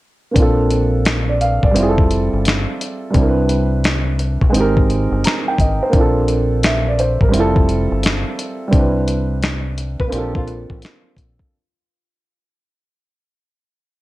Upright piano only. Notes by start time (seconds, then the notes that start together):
0.31 A#3 C4
0.37 D4 F4
0.42 A4
1.29 D5
1.41 F5
1.64 D5
1.71 G3 C4
1.76 E4 F4
1.82 G#4
1.89 A4
3.10 G3 C4
3.16 D4 E4
3.22 A#4
3.28 B4
4.50 G#3 C4
4.55 D#4 G4
4.61 A#4
5.25 A#5
5.48 G5
5.61 D#5
5.83 C5
5.89 A#3 C4
5.95 D4 F4
6.01 A4
6.65 E5
6.88 D5
7.00 C5
7.22 A#4
7.29 G3 C4
7.34 E4 F4
7.40 A4
8.68 G3 C4
8.74 D4 E4
8.79 B4
10.07 A#3 C4
10.12 D4 F4
10.18 A4